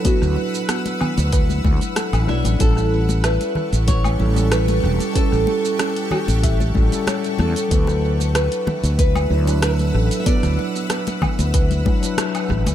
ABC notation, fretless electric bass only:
X:1
M:4/4
L:1/16
Q:1/4=94
K:D
V:1 name="Fretless electric bass" clef=bass
z D,, z4 z D,,3 D,, z2 A,,, B,,, A,,, | A,,,4- A,,, z2 A,,,3 A,,,4 E,,, z | z A,,, z4 z A,,,3 A,,, z3 E,, z | D,,4- D,, z2 D,,3 D,,4 A,,, z |
z D,, z4 z D,,3 z4 A,,, D,, |]